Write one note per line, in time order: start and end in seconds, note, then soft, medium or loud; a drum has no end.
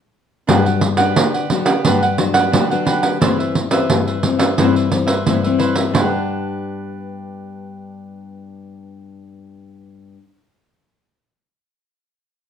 0.47 1.13 G2 medium
0.47 0.80 F#3 medium
0.47 0.80 B3 soft
0.47 0.63 D4 medium
0.47 0.81 D4 medium
0.47 0.64 G4 medium
0.47 0.64 B4 medium
0.47 0.64 F#5 medium
0.47 pandeiro medium
0.65 0.81 G4 soft
0.65 0.81 B4 soft
0.65 0.81 F#5 soft
0.65 pandeiro soft
0.81 muted cavaquinho stroke soft
0.81 pandeiro medium
0.97 1.45 B3 medium
0.97 1.45 D4 medium
0.97 1.32 G4 medium
0.97 1.32 B4 medium
0.97 1.31 F#5 medium
0.97 pandeiro medium
1.16 1.82 D3 medium
1.16 pandeiro medium
1.34 1.66 G4 soft
1.34 1.66 B4 soft
1.34 1.64 F#5 soft
1.34 pandeiro soft
1.50 1.71 F#3 medium
1.50 1.71 B3 medium
1.50 1.71 D4 medium
1.50 pandeiro medium
1.65 1.83 G4 soft
1.65 1.83 B4 soft
1.65 1.82 F#5 medium
1.65 pandeiro medium
1.85 2.50 G2 medium
1.85 2.05 F#3 soft
1.85 2.05 B3 medium
1.85 2.00 D4 medium
1.85 2.06 D4 medium
1.85 2.01 G4 medium
1.85 2.01 B4 medium
1.85 2.02 F#5 medium
1.85 pandeiro medium
2.03 2.18 G4 soft
2.03 2.18 B4 soft
2.03 2.18 F#5 soft
2.03 pandeiro soft
2.18 2.47 F#3 medium
2.18 2.47 B3 soft
2.18 2.48 D4 medium
2.18 muted cavaquinho stroke soft
2.18 pandeiro medium
2.34 2.52 G4 soft
2.34 2.51 B4 medium
2.34 2.50 F#5 medium
2.34 pandeiro medium
2.52 3.18 D3 medium
2.52 2.64 F#3 medium
2.52 2.64 B3 soft
2.52 2.68 D4 soft
2.52 2.64 D4 medium
2.52 2.69 G4 soft
2.52 2.69 B4 soft
2.52 2.69 F#5 soft
2.52 pandeiro medium
2.70 3.16 F#3 medium
2.70 3.17 B3 medium
2.70 3.17 D4 soft
2.70 2.85 G4 soft
2.70 2.86 B4 soft
2.70 2.86 F#5 soft
2.70 pandeiro soft
2.85 3.02 D4 medium
2.85 3.03 G4 medium
2.85 3.02 B4 medium
2.85 3.01 F#5 medium
2.85 pandeiro medium
3.02 3.20 G4 soft
3.02 3.19 B4 soft
3.02 3.19 F#5 soft
3.02 pandeiro medium
3.21 3.86 G2 medium
3.21 3.67 E3 medium
3.21 3.67 B3 soft
3.21 3.67 C4 medium
3.21 3.37 E4 medium
3.21 3.38 B4 medium
3.21 3.37 C5 medium
3.21 3.38 E5 medium
3.21 pandeiro medium
3.39 3.54 B4 soft
3.39 3.54 C5 soft
3.39 3.54 E5 soft
3.39 pandeiro soft
3.55 muted cavaquinho stroke soft
3.55 pandeiro medium
3.71 4.17 E3 medium
3.71 4.18 C4 medium
3.71 4.05 B4 medium
3.71 4.06 C5 soft
3.71 4.05 E5 medium
3.71 pandeiro medium
3.90 4.55 G2 medium
3.90 pandeiro medium
4.07 4.38 B4 soft
4.07 4.39 C5 soft
4.07 4.37 E5 soft
4.07 pandeiro soft
4.23 4.44 E3 soft
4.23 4.44 B3 soft
4.23 4.44 C4 medium
4.23 pandeiro medium
4.39 4.56 B4 medium
4.39 4.56 C5 soft
4.39 4.55 E5 medium
4.39 pandeiro medium
4.58 5.23 G2 medium
4.58 4.87 E3 soft
4.58 4.87 B3 soft
4.58 4.87 C4 medium
4.58 4.73 E4 medium
4.58 4.74 B4 medium
4.58 4.74 C5 medium
4.58 4.74 E5 medium
4.58 pandeiro medium
4.75 4.90 B4 soft
4.75 4.90 C5 soft
4.75 4.90 E5 soft
4.75 pandeiro soft
4.91 5.12 E3 soft
4.91 5.12 B3 medium
4.91 5.12 C4 medium
4.91 muted cavaquinho stroke soft
4.91 pandeiro soft
5.07 5.24 B4 medium
5.07 5.25 C5 soft
5.07 5.23 E5 medium
5.07 pandeiro medium
5.26 5.90 G2 medium
5.26 5.38 E3 soft
5.26 5.39 B3 soft
5.26 5.39 C4 medium
5.26 5.42 E4 soft
5.26 5.42 B4 soft
5.26 5.42 C5 soft
5.26 5.42 E5 soft
5.26 pandeiro medium
5.43 5.90 E3 soft
5.43 5.90 B3 soft
5.43 5.91 C4 medium
5.43 5.59 B4 soft
5.43 5.58 C5 soft
5.43 5.59 E5 soft
5.43 pandeiro soft
5.59 5.75 E4 medium
5.59 5.75 B4 medium
5.59 5.76 C5 medium
5.59 5.74 E5 medium
5.59 pandeiro soft
5.75 5.92 B4 soft
5.75 5.93 C5 soft
5.75 5.92 E5 soft
5.75 pandeiro medium
5.91 10.16 G2 soft
5.91 10.17 D4 medium
5.91 10.18 G4 medium
5.91 pandeiro medium
5.96 10.18 B4 medium
5.96 10.19 F#5 medium
6.01 10.21 B3 medium
6.06 10.23 D4 medium